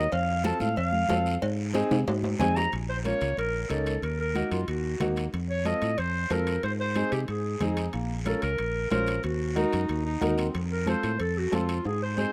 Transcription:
Already playing: D#5
0.12 F2 F5, cowbell, high conga, long guiro
0.44 C4 F4 A4 A5, cowbell, high conga, short guiro
0.60 A2 F5, high conga, short guiro
0.76 F2 F5, cowbell, high conga, long guiro
0.92 high conga
1.09 F2 C4 F4 A4, cowbell, high conga, low timbale, short guiro
1.26 short guiro
1.42 G#2, cowbell, high conga, long guiro
1.73 C4 D#4 G#4, cowbell, high conga, high timbale, short guiro
1.91 C3, high conga, high timbale, short guiro
2.07 G#2, cowbell, low timbale, long guiro
2.23 high conga, low timbale
2.39 F2 C4 D#4 G#4 G#5, cowbell, high conga, low conga, low timbale, short guiro
2.56 A#5, low timbale, short guiro
2.72 A#1, high conga, high timbale, long guiro
2.89 C5
3.04 A#3 C#4 F4 C#5, high conga, high timbale, short guiro
3.21 C#2, high timbale, short guiro
3.37 A#1 A#4, high conga, high timbale, long guiro
3.62 A#4
3.69 C#2 A#3 C#4 D#4 A4, high conga, high timbale, short guiro
3.86 high timbale, short guiro
4.02 D#2 A#4, high conga, high timbale, long guiro
4.20 A#4
4.35 A#3 D#4 F#4, high conga, high timbale, short guiro
4.51 F#2 F4, high timbale, short guiro
4.68 D#2 F#4, high timbale, long guiro
5.00 D#2 A#3 D#4 F#4, high conga, low conga, high timbale, low timbale, short guiro
5.16 high timbale, short guiro
5.33 F2, high conga, high timbale, long guiro
5.50 C#5
5.65 C4 F4 A4 D#5, high conga, high timbale, short guiro
5.82 A2, high timbale, short guiro
5.98 F2 C5, high conga, high timbale, long guiro
6.30 F2 C4 F4 A4 A#4, high conga, high timbale, low timbale, short guiro
6.47 high timbale, short guiro
6.63 G#2 C5, high conga, high timbale, long guiro
6.80 C5
6.95 C4 D#4 G#4, high conga, high timbale, short guiro
7.12 C3 G4, high timbale, short guiro
7.28 G#2 G#4, high conga, high timbale, long guiro
7.60 F2 C4 D#4 G#4, high conga, low conga, high timbale, short guiro
7.77 high timbale, short guiro
7.93 A#1 A#3, high conga, high timbale, long guiro
8.25 C#4 F4 A4 A#4, high conga, high timbale, short guiro
8.42 C#2 A#4, high timbale, short guiro
8.58 A#1, high conga, high timbale, long guiro
8.90 A#1 C#4 F4 A#4 C5, high conga, high timbale, low timbale, short guiro
9.06 high timbale, short guiro
9.23 D#2 F#4, high conga, high timbale, long guiro
9.55 D#4 F#4 A#4, high conga, high timbale, short guiro
9.73 F#2, high timbale, short guiro
9.89 D#2, high conga, high timbale, long guiro
10.05 D#4
10.21 D#2 D#4 F#4 A#4, high conga, low conga, high timbale, short guiro
10.38 C4, high timbale, short guiro
10.54 F2, high conga, high timbale, long guiro
10.72 A#4
10.86 C4 F4 A4 C5, high conga, high timbale, short guiro
11.03 A2, high timbale, short guiro
11.20 F2 A4, high conga, high timbale, long guiro
11.38 F#4
11.51 F2 C4 F4 A4, high conga, high timbale, low timbale, short guiro
11.69 high timbale, short guiro
11.85 G#2 G#4, high conga, high timbale, long guiro
12.02 C5
12.17 C4 D#4 G#4 C5, high conga, short guiro

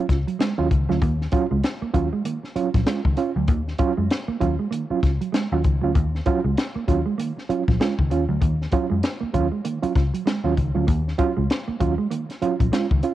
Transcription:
0.09 C#2 C#4 F4, kick, snare, closed hi-hat
0.27 F#3, closed hi-hat
0.39 G#3, snare, closed hi-hat
0.58 D#2 F#3 C#4 F4
0.71 C#2 D#3, muted clean electric guitar stroke, kick, closed hi-hat
0.89 D2 F#3 C#4 F4, snare
1.01 D#2 D#3 A#3, kick, closed hi-hat
1.21 snare
1.32 F#3 C#4 F4, muted clean electric guitar stroke, kick, closed hi-hat
1.50 C#2 G#3 C#4 F4
1.64 snare, closed hi-hat
1.82 A#3, muted picked electric bass stroke
1.93 D#2 F#3 C#4 F4, muted clean electric guitar stroke, kick, closed hi-hat
2.13 G#3
2.24 D#3 A#3, closed hi-hat
2.43 muted clean electric guitar stroke, snare
2.56 F#3 C#4 F4, muted picked electric bass stroke, closed hi-hat
2.74 A#1 F#3 C#4 F4, kick, snare, closed hi-hat
2.86 G#3 C#4 F4, muted picked electric bass stroke, snare, closed hi-hat
3.05 C#2 D#3, muted clean electric guitar stroke, kick
3.17 C#4 F4, closed hi-hat
3.36 D2 F#3
3.48 D#2 D#3 A#3, kick, closed hi-hat
3.68 snare
3.79 F#3 C#4 F4, muted clean electric guitar stroke, kick, closed hi-hat
3.97 F#2 G#3 C#4 F4
4.11 snare, closed hi-hat
4.28 A#3, muted picked electric bass stroke
4.40 D#2 F#3 C#4 F4, muted clean electric guitar stroke, kick, closed hi-hat
4.59 G#3
4.71 D#3 A#3, closed hi-hat
4.90 F#3 C#4 F4, muted clean electric guitar stroke, muted picked electric bass stroke
5.03 C#2, kick, snare, closed hi-hat
5.21 F#3, closed hi-hat
5.32 G#3, snare, closed hi-hat
5.52 D#2 F#3 C#4 F4
5.64 C#2 D#3, muted clean electric guitar stroke, kick, closed hi-hat
5.82 D2 F#3 C#4 F4
5.95 D#2 D#3 A#3, kick, closed hi-hat
6.15 snare
6.26 F#3 C#4 F4, muted clean electric guitar stroke, kick, closed hi-hat
6.44 C#2 G#3 C#4 F4
6.58 snare, closed hi-hat
6.76 A#3, muted picked electric bass stroke
6.88 D#2 F#3 C#4 F4, muted clean electric guitar stroke, kick, closed hi-hat
7.06 G#3
7.18 D#3 A#3, closed hi-hat
7.37 muted clean electric guitar stroke, snare
7.49 F#3 C#4 F4, muted picked electric bass stroke, closed hi-hat
7.68 A#1 F#3 C#4 F4, kick, snare
7.80 G#3 C#4 F4, snare, closed hi-hat
7.99 C#2 D#3, muted clean electric guitar stroke, kick
8.11 D#2 C#4 F4, closed hi-hat
8.29 D2 F#3
8.41 D#2 D#3 A#3, kick, closed hi-hat
8.62 snare
8.72 F#3 C#4 F4, muted clean electric guitar stroke, kick, closed hi-hat
8.90 F#2 G#3 C#4 F4
9.03 snare, closed hi-hat
9.21 A#3, muted picked electric bass stroke
9.34 D#2 F#3 C#4 F4, muted clean electric guitar stroke, kick, closed hi-hat
9.52 G#3
9.65 D#3 A#3, closed hi-hat
9.83 F#3 C#4 F4, muted picked electric bass stroke, muted clean electric guitar stroke, closed hi-hat
9.95 C#2 C#4 F4, kick, snare, closed hi-hat
10.14 F#3, closed hi-hat
10.26 G#3, snare, closed hi-hat
10.44 D#2 F#3 C#4 F4
10.56 C#2 D#3, muted clean electric guitar stroke, kick, closed hi-hat
10.75 D2 F#3 C#4 F4
10.87 D#2 D#3 A#3, kick, closed hi-hat
11.08 snare
11.18 F#3 C#4 F4, muted clean electric guitar stroke, kick, closed hi-hat
11.37 C#2 G#3 C#4 F4
11.50 snare, closed hi-hat
11.68 A#3, muted picked electric bass stroke
11.80 D#2 F#3 C#4 F4, muted clean electric guitar stroke, kick, closed hi-hat
11.98 G#3
12.11 D#3 A#3, closed hi-hat
12.29 muted clean electric guitar stroke, snare, closed hi-hat
12.42 F#3 C#4 F4, muted picked electric bass stroke, closed hi-hat
12.59 A#1 F#3 C#4 F4, kick, closed hi-hat
12.72 G#3 C#4 F4, muted picked electric bass stroke, snare, closed hi-hat
12.91 C#2 D#3, muted clean electric guitar stroke, kick
13.03 C#4 F4, closed hi-hat

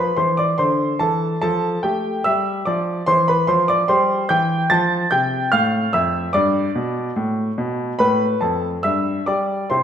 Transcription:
Already playing: B5
0.00 B4
0.16 E3 C5 C6
0.37 D5 D6
0.58 D3 C5 C6
0.99 E3 A4 A5
1.41 F3 A4 A5
1.83 A3 G4 G5
2.24 G3 E5 E6
2.65 F3 D5 D6
3.06 E3 C5 C6
3.28 B4 B5
3.47 F3 C5 C6
3.68 D5 D6
3.88 G3 C5 C6
4.29 E3 G5 G6
4.70 F3 A5 A6
5.11 C3 G5 G6
5.52 A2 F5 F6
5.93 F2 E5 E6
6.33 G2 D5 D6
6.75 B2
7.16 A2
7.58 B2
7.99 A2 B4 B5
8.41 F2 A4 A5
8.83 G2 E5 E6
9.26 G3 D5 D6
9.70 C3 C4 E4 C5 C6

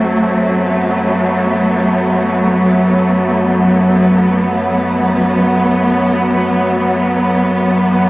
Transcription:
Already playing: F#2 F#3 A3 C4
0.47 B3
7.51 F#2
7.77 E3

